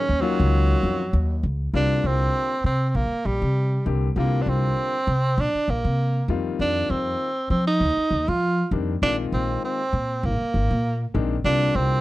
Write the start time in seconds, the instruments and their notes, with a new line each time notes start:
Already playing: tenor saxophone C#4
0.09 upright bass D#2
0.21 grand piano D#3 F#3 A#3 C#4 F4, tenor saxophone F#3
0.40 upright bass C#2
0.83 upright bass F2
1.13 upright bass D#2
1.43 upright bass C#2
1.74 upright bass C2, grand piano D3 G3 A#3 C4 F4, tenor saxophone D4
2.04 upright bass C2, tenor saxophone C4
2.64 upright bass C3, tenor saxophone C4
2.89 tenor saxophone C4
2.95 upright bass A#1, tenor saxophone A#3
3.12 muted upright bass stroke
3.25 upright bass A#1, tenor saxophone G3
3.42 upright bass C3
3.86 upright bass C2, grand piano D3 G3 A#3 C4 G4
4.16 upright bass C2, grand piano D3 G3 A#3 C4 F4, tenor saxophone A#3
4.41 tenor saxophone D4
4.46 upright bass C2, tenor saxophone C4
5.07 upright bass C3
5.38 upright bass A#1, tenor saxophone D4
5.55 muted upright bass stroke
5.68 upright bass A#1, tenor saxophone A#3
5.85 upright bass C3
6.28 upright bass F2, grand piano D#3 G3 A#3 C4 F4
6.59 upright bass F2, tenor saxophone D4
6.90 upright bass F2, tenor saxophone C4
7.50 upright bass F3, tenor saxophone C4
7.67 tenor saxophone D#4
7.80 upright bass D#2
7.97 muted upright bass stroke
8.11 upright bass D#2
8.28 upright bass F3, tenor saxophone F4
8.71 upright bass F2, grand piano D#3 G3 A#3 C4 D4
9.02 upright bass A#1, grand piano D#3 G#3 A#3 C4 F4, tenor saxophone D4
9.32 upright bass A#1, tenor saxophone C4
9.65 tenor saxophone C4
9.93 upright bass A#2
10.23 upright bass G#1, tenor saxophone A#3
10.40 muted upright bass stroke
10.54 upright bass G#1
10.71 upright bass A#2
11.14 upright bass A#1, grand piano D#3 G#3 A#3 C4 D4
11.44 upright bass C2, grand piano D3 G3 A#3 C4 F4, tenor saxophone D4
11.75 upright bass C2, tenor saxophone C4